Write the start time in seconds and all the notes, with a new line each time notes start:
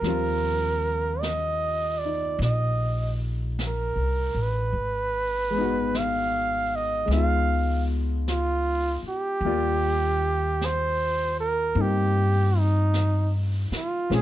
Already playing: A#4
0.01 D#2 F3 G3, brush sweep, snare
0.07 C4 F4
1.21 D#5, brush sweep, snare, hi-hat pedal
1.99 D5
2.06 D#4
2.39 A#1, brush sweep, snare
2.43 D#5
3.59 brush sweep, snare, hi-hat pedal
3.67 A#4
3.96 C2
4.34 A1
4.42 B4
4.73 G#1, brush sweep
5.50 G#3 B3
5.58 D#4 F#4
5.95 F5, brush sweep, snare, hi-hat pedal
6.76 D#5
7.06 C#2 G#3 B3
7.11 D#4 F5, brush sweep, snare
7.16 F4
8.28 F4, brush sweep, snare, hi-hat pedal
9.03 muted upright bass stroke
9.09 G4
9.41 D#2 G3, brush sweep
9.45 A#3 F4 D5
10.61 brush sweep, snare, hi-hat pedal
10.65 C5
11.40 A#4
11.75 G2 A#3 C4 D#4, brush sweep
11.81 G4
12.59 D#4
12.94 brush sweep, snare, hi-hat pedal
13.71 muted upright bass stroke, snare
13.77 F4
14.10 A#1 G#3 C4 C#4 F4, brush sweep, snare
14.15 G#4